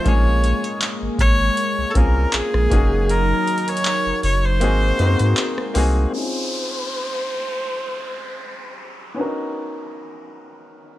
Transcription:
0.04 A#1 G#3 A#3 C#4 F4 G#4 C#5, kick, closed hi-hat
0.44 closed hi-hat
0.64 closed hi-hat
0.82 clap, closed hi-hat
1.02 G#1
1.19 G#1 C#5, kick, closed hi-hat
1.57 closed hi-hat
1.78 C2
1.90 A4
1.94 C2 A#3 C4 C#4 F4 G#4 A#4, kick, closed hi-hat
2.33 A#1 G#4, clap, closed hi-hat
2.54 A#1, cross-stick
2.70 F#1 F#3 A#3 C#4 D#4 F#4 G#4 A#4, kick, closed hi-hat
3.09 A#4, closed hi-hat
3.47 closed hi-hat
3.58 closed hi-hat
3.68 C#5, closed hi-hat
3.77 closed hi-hat
3.85 clap, closed hi-hat
4.06 F#1
4.23 F#1 C#5, open hi-hat
4.45 C5
4.60 G#1 G#3 A#3 C4 D#4 F#4 G#4, closed hi-hat
4.98 F#2 A#3 B3 D#4 F#4 A#4, closed hi-hat
5.06 C4
5.19 G#2, closed hi-hat
5.37 clap, closed hi-hat
5.58 cross-stick
5.74 C2 A#3 C4 D#4 F#4 G#4, open hi-hat
6.10 C4 C#4 D#4 C5, downlifter
6.15 E4 G#4
6.22 F4
9.14 B3 C#4 D4
9.20 F#4 A#4
9.24 D#4

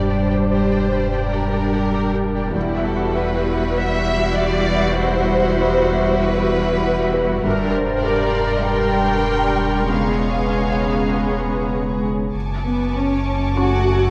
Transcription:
Already playing: E1 G2 G3 D4 G4 C5 D5 G5
0.09 C5
1.32 A#4
2.54 E1 E2 G3 E4 F#4 E5 F#5 B6
2.85 A4
3.16 B4 C7
3.78 E5
4.37 D5
4.99 C5
6.22 B4
7.13 B4
7.44 E1 G1 G2 G3 D4 A#4 D5 G5 A#5 C6
7.74 C5
8.05 G3 D4 A#4 D5
8.66 G3 D4 A#4 G5 C#6
9.88 C#2 G#3 B3 C#4 G#4 C#5 F5 G#5
10.83 B5
12.34 F#1 F#2 G#5 A5 C#6 D6
12.65 B3 B4
12.96 C#4 C#5
13.57 A3 C#4 F#4 F#5 C#6 G#6

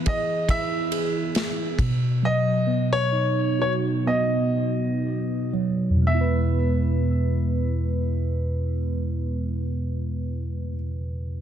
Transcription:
Already playing: E3 B3 E4 B4
0.06 G#4 D#5, kick, ride
0.49 E4 E5, kick, ride
0.92 G#4, ride
1.35 snare, ride
1.79 B2, kick, ride
2.23 F#3 D#5
2.67 B3
2.93 C#5
3.12 D#4
3.59 F#4 C#5
4.07 B3 D#5
5.53 F#3
5.89 E2
5.96 B2
6.02 G#3
6.07 B3 E5
6.15 E4
6.21 B4

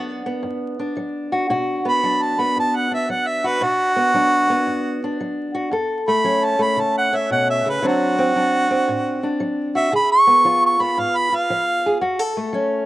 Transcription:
Already playing: F#3 B3 D4
0.26 B3
0.43 F#2
0.79 D4
0.97 F#3
1.32 F#4
1.50 B2 F#4
1.85 B3 B5
2.03 F#3 D4
2.22 A5
2.39 B3 B5
2.56 F#2 A5
2.76 F#5
2.91 D4 E5
3.09 F#3 F#5
3.27 E5
3.44 F#4 B4
3.61 B2 D4 F#4
3.96 B3
4.14 F#3 D4
4.50 B3
4.67 F#2
5.04 D4
5.20 F#3
5.55 F#4
5.71 F#2 A4
6.08 A3 B5
6.24 F#3 C#4
6.45 A5
6.59 A3 B5
6.76 C#3 A5
6.98 F#5
7.13 C#4 E5
7.30 B2 F#5
7.50 E5
7.66 C#3 B4
7.82 D3 F#3 C4 D4
7.87 F#4
8.18 C4
8.36 F#3 D4
8.71 C4
8.88 A2
9.23 D4
9.40 F#3
9.75 F#4 E5
9.92 C#3 G#4 B5
10.12 C#6
10.27 B3
10.45 F3 F4
10.66 C#6
10.80 B3 B5
10.97 G#2 F5
11.17 B5
11.32 F4 F5
11.50 F3
11.86 G#4
12.01 F#2 F#4
12.19 A4
12.37 A3
12.53 F#3 C#4

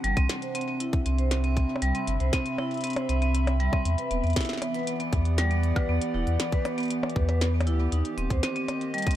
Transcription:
Already playing: C3 D4 G4 F#5
0.04 G1 G3, closed hi-hat
0.17 C2 C4, kick, closed hi-hat
0.22 C4
0.29 snare, closed hi-hat
0.39 C5 E5, closed hi-hat
0.55 C4, closed hi-hat
0.61 closed hi-hat
0.68 C4
0.80 E4, closed hi-hat
0.93 B5, kick, closed hi-hat
1.06 C2 C4, closed hi-hat
1.19 C5, closed hi-hat
1.31 C4, snare, closed hi-hat
1.44 C4, closed hi-hat
1.57 C4, kick, closed hi-hat
1.76 percussion blips
1.82 C2 G3, closed hi-hat
1.95 C4, closed hi-hat
2.07 G1, closed hi-hat
2.20 C2 C5, closed hi-hat
2.33 C4, kick, snare, closed hi-hat
2.46 C4, closed hi-hat
2.58 E4, percussion blips
2.71 closed hi-hat
2.74 closed hi-hat
2.77 closed hi-hat
2.81 C4, closed hi-hat
2.84 closed hi-hat
2.87 closed hi-hat
2.90 closed hi-hat
2.93 C5, closed hi-hat, percussion blips
3.09 C2 C4, closed hi-hat
3.22 C4, closed hi-hat
3.35 C4, closed hi-hat
3.47 closed hi-hat, percussion blips
3.60 G3, closed hi-hat
3.73 C4, kick, percussion blips
3.85 E2 E3, closed hi-hat
3.97 B3 B4, closed hi-hat
4.11 E1 B3, closed hi-hat
4.24 E2 B3, closed hi-hat
4.27 closed hi-hat
4.30 closed hi-hat
4.33 snare, closed hi-hat
4.36 E4, kick, closed hi-hat
4.41 snare, closed hi-hat
4.45 snare, closed hi-hat
4.49 snare, closed hi-hat
4.53 snare
4.58 snare
4.62 B3 F#5, closed hi-hat, percussion blips
4.66 G4
4.74 B4 D5, closed hi-hat
4.87 B3, closed hi-hat
5.00 B3, closed hi-hat
5.13 E2 B3, kick, closed hi-hat
5.25 closed hi-hat
5.38 G3, snare, closed hi-hat
5.51 B3, closed hi-hat
5.63 closed hi-hat
5.76 B4, kick, percussion blips
5.89 E2 B3
6.02 B3, closed hi-hat
6.14 E1 E4
6.27 E2, closed hi-hat
6.40 B3, snare, closed hi-hat
6.52 B4, kick, closed hi-hat
6.65 B3, closed hi-hat, percussion blips
6.78 B3, closed hi-hat
6.80 closed hi-hat
6.83 closed hi-hat
6.85 closed hi-hat
6.88 B3, closed hi-hat
6.91 closed hi-hat
7.03 percussion blips
7.10 closed hi-hat
7.16 E2 B4, kick
7.29 B4, closed hi-hat, percussion blips
7.41 B3, snare
7.54 B3
7.61 closed hi-hat, percussion blips
7.67 D2 E4, closed hi-hat
7.80 B3
7.92 D#2 D#3 D#4, closed hi-hat
8.05 closed hi-hat
8.12 A#3
8.18 D#1 C4 D#5, closed hi-hat
8.30 D#2 C5, kick, closed hi-hat
8.43 C4, snare, closed hi-hat
8.56 C4, closed hi-hat
8.68 C4, closed hi-hat, percussion blips
8.81 closed hi-hat
8.94 G3, closed hi-hat
8.98 closed hi-hat
9.02 closed hi-hat
9.07 C4, kick, closed hi-hat
9.11 closed hi-hat

